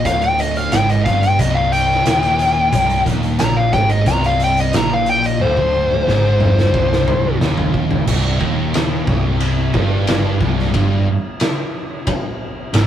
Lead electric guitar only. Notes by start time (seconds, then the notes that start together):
0.06 F5
0.24 G5
0.40 D#5
0.57 F5
0.72 G5
0.90 D#5
1.05 F5
1.23 G5
1.39 D#5
1.54 F5
1.72 G5
3.40 A#5
3.57 F5
3.74 G5
3.90 D#5
4.08 A#5
4.26 F5
4.44 G5
4.60 D#5
4.77 A#5
4.94 F5
5.09 G5
5.26 D#5
5.41 C5